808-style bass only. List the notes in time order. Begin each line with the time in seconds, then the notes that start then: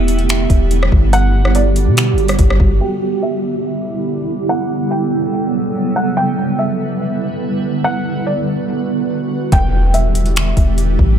Already playing: E1
0.50 E1
0.92 G1
1.86 B2
2.13 G1
2.39 G1
2.60 G1
9.52 E1
10.57 E1
10.99 A1